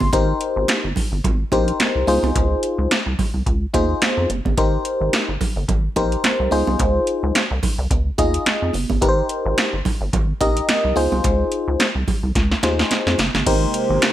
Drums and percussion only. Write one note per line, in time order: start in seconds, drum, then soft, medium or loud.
0.00 kick medium
0.00 high conga medium
0.13 kick loud
0.13 closed hi-hat medium
0.13 muted conga medium
0.41 closed hi-hat medium
0.68 snare loud
0.68 clap medium
0.68 closed hi-hat medium
0.68 high conga medium
0.96 kick medium
0.96 open hi-hat medium
0.96 low conga medium
1.24 kick loud
1.24 closed hi-hat medium
1.24 muted conga soft
1.24 low conga medium
1.52 kick medium
1.52 closed hi-hat medium
1.52 muted conga medium
1.68 closed hi-hat medium
1.80 snare loud
1.80 clap medium
1.80 closed hi-hat loud
1.80 high conga medium
2.07 open hi-hat medium
2.07 high conga medium
2.24 high conga medium
2.35 kick loud
2.35 closed hi-hat medium
2.35 muted conga medium
2.63 closed hi-hat medium
2.91 snare loud
2.91 clap medium
2.91 closed hi-hat medium
2.91 high conga medium
3.19 kick medium
3.19 open hi-hat medium
3.19 low conga medium
3.46 kick loud
3.46 closed hi-hat medium
3.74 kick medium
3.74 closed hi-hat medium
3.74 muted conga medium
4.02 snare loud
4.02 clap medium
4.02 closed hi-hat loud
4.02 high conga medium
4.29 closed hi-hat medium
4.29 high conga medium
4.45 kick medium
4.45 high conga medium
4.57 kick loud
4.57 closed hi-hat medium
4.57 muted conga medium
4.85 closed hi-hat medium
5.13 snare loud
5.13 clap medium
5.13 closed hi-hat loud
5.13 high conga medium
5.41 kick medium
5.41 open hi-hat medium
5.41 low conga medium
5.68 kick loud
5.68 closed hi-hat medium
5.68 muted conga soft
5.68 low conga medium
5.96 kick medium
5.96 closed hi-hat medium
5.96 muted conga medium
6.12 closed hi-hat medium
6.24 snare loud
6.24 clap medium
6.24 closed hi-hat loud
6.24 high conga medium
6.51 open hi-hat medium
6.51 high conga medium
6.67 high conga medium
6.79 kick loud
6.79 closed hi-hat medium
6.79 muted conga medium
7.07 closed hi-hat medium
7.35 snare medium
7.35 clap medium
7.35 closed hi-hat medium
7.35 high conga medium
7.63 kick medium
7.63 open hi-hat medium
7.63 low conga medium
7.91 kick loud
7.91 closed hi-hat medium
7.91 muted conga soft
8.18 kick medium
8.18 closed hi-hat medium
8.18 muted conga medium
8.34 closed hi-hat medium
8.46 snare loud
8.46 clap medium
8.46 closed hi-hat loud
8.46 high conga medium
8.73 open hi-hat medium
8.73 high conga soft
8.90 kick medium
8.90 high conga medium
9.02 kick loud
9.02 closed hi-hat medium
9.02 muted conga medium
9.29 closed hi-hat medium
9.58 snare loud
9.58 clap medium
9.58 closed hi-hat medium
9.58 high conga medium
9.85 kick medium
9.85 open hi-hat medium
9.85 low conga medium
10.13 kick loud
10.13 closed hi-hat medium
10.13 muted conga soft
10.13 low conga medium
10.41 kick medium
10.41 closed hi-hat medium
10.41 muted conga medium
10.57 closed hi-hat medium
10.69 snare loud
10.69 clap medium
10.69 closed hi-hat loud
10.69 high conga medium
10.96 open hi-hat medium
10.96 high conga medium
11.12 high conga medium
11.24 kick loud
11.24 closed hi-hat medium
11.24 muted conga medium
11.52 closed hi-hat medium
11.80 snare loud
11.80 clap medium
11.80 closed hi-hat loud
11.80 high conga medium
12.08 kick medium
12.08 open hi-hat medium
12.08 low conga medium
12.35 kick loud
12.35 snare medium
12.35 closed hi-hat medium
12.52 snare medium
12.63 snare medium
12.63 closed hi-hat medium
12.63 muted conga soft
12.79 snare medium
12.91 snare medium
12.91 closed hi-hat loud
12.91 high conga medium
13.07 snare medium
13.18 snare loud
13.18 closed hi-hat medium
13.18 high conga medium
13.35 snare medium
13.35 high conga medium
13.47 kick loud
13.47 closed hi-hat medium
13.47 crash loud
13.47 muted conga medium
13.74 closed hi-hat medium
14.02 snare loud
14.02 clap medium
14.02 closed hi-hat loud
14.02 high conga medium